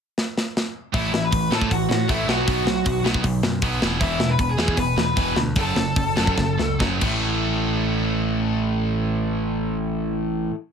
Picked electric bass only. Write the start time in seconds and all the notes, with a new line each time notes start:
0.94 A1
1.13 A1
1.32 A1
1.51 A2
1.71 A1
1.89 A2
2.09 A1
2.27 B1
2.48 B1
2.64 B1
2.86 B1
3.03 B1
3.24 B1
3.43 F#2
3.62 B1
3.82 E1
4.01 E1
4.19 E1
4.39 E1
4.58 E2
4.77 E1
4.97 E2
5.17 E1
5.36 D2
5.56 F#1
5.76 F#1
5.96 F#1
6.17 F#1
6.38 F#1
6.59 C#2
6.80 F#1
7.02 A1